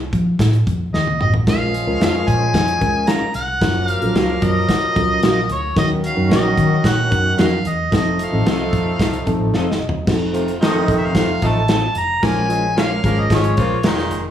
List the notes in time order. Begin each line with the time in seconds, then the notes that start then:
0.13 F3, kick, closed hi-hat
0.39 A2, kick, snare, closed hi-hat
0.53 closed hi-hat
0.67 F2, kick, closed hi-hat
0.93 D#2 D#5, snare
1.07 high tom
1.19 A1 D#5, mid tom
1.34 floor tom
1.47 A#1 F3 G#3 C#4 F4 G#4 A#4 F5, kick, snare, closed hi-hat
1.74 closed hi-hat
1.87 C#2 G#3 C#4 F4 A#4
2.00 F2 C#4 G#4 A#4 F5, snare, closed hi-hat
2.28 A#2 G#5, kick, closed hi-hat
2.54 F2, kick, snare, closed hi-hat
2.68 closed hi-hat
2.81 C#2 G#3 C#4 F4 A#4, kick, closed hi-hat
3.07 C#4 G#4 A#4 F5 A#5, snare, closed hi-hat
3.22 muted fingered electric bass stroke
3.34 C2 F#5, closed hi-hat
3.61 F#1 F3 F#3 A#3 C#4 F4 A#4, kick, snare, closed hi-hat
3.88 F5, closed hi-hat
4.02 A#1 F#3 C#4 F4 A4, closed hi-hat
4.08 A#4
4.15 C#2 C#4 F#4 A#4 F5, snare, closed hi-hat
4.42 F#2 D#5, kick, closed hi-hat
4.69 kick, snare, closed hi-hat
4.82 muted fingered electric bass stroke
4.95 C#2 F#3 C#4 F4 A4, kick, closed hi-hat
5.02 A#4
5.23 A#1 C#4 F#4 A#4 F5, snare, closed hi-hat
5.49 D2 C#5, closed hi-hat
5.76 D#2 D#3 F#3 C#4 D#4 F#4 A#4 D#5, kick, snare, closed hi-hat
6.04 F5, closed hi-hat
6.17 F#2 F#3 C#4 D#4 A#4
6.30 A#1 C#4 F#4 A#4 D#5, snare, closed hi-hat
6.58 D#3, kick, closed hi-hat
6.84 A#2 F#5, kick, snare, closed hi-hat
7.10 F#2 F#3 C#4 D#4 A#4, kick, closed hi-hat
7.37 F2 C#4 F#4 A#4 D#5 F5, snare, closed hi-hat
7.65 E2 D#5, closed hi-hat
7.92 F1 F3 A3 C4 D#4 A4, kick, snare, closed hi-hat
7.96 D#5
8.19 closed hi-hat
8.24 F5
8.32 A1 F3 C4 D#4 A4
8.46 C2 C4 F4 A4 D#5, snare, closed hi-hat
8.73 F2, kick, closed hi-hat
8.99 C2, kick, snare, closed hi-hat
9.13 closed hi-hat
9.26 F3 C4 D#4 A4 A5, muted fingered electric bass stroke, kick, closed hi-hat
9.39 A1
9.54 C4 F4 A4 D#5 F5, snare
9.72 snare
9.79 E1 D#5
9.89 floor tom
10.07 F1 F3 C4 D#4 F#4, kick, snare, crash
10.14 A4
10.33 C3 F3 A3 F4, closed hi-hat
10.48 closed hi-hat
10.61 C3 D#3 A3 C4 D#4 F4 A4 D#5, snare, closed hi-hat
10.74 F3 C4 D#4 A4
10.88 F1 F3 C4 D#4 A4, kick, closed hi-hat
10.98 E5
11.06 F5
11.15 F1 C3 F3 A3 F4, kick, snare, closed hi-hat
11.42 A1 F3 A3 D#4 A4, kick, closed hi-hat
11.46 A5
11.68 C4 F4 A4 D#5, snare, closed hi-hat
11.95 F1 A#5, closed hi-hat
12.23 A#1 F3 G#3 A#3 C#4 F4 A#4 G#5, kick, snare, closed hi-hat
12.49 F3 G#3 C#4 G#4, closed hi-hat
12.76 F3 A#3 C#4 F4 G#4 A#4 C#5 F5, snare, closed hi-hat
12.90 G#3 C#4 F4 C#5
13.04 G#1 F3 G#3 A#3 C#4 F4 G#4 A#4, kick, closed hi-hat
13.21 D#5
13.30 G#1 F3 G#3 C#4 G#4 C#5, kick, snare, closed hi-hat
13.44 closed hi-hat
13.57 A#1 C#3 F3 A#3 F4, kick, closed hi-hat
13.83 E1 A#2 D#3 G#3 D#4 F4 G#4 C#5 F5, snare, closed hi-hat
13.98 snare
14.11 F1, closed hi-hat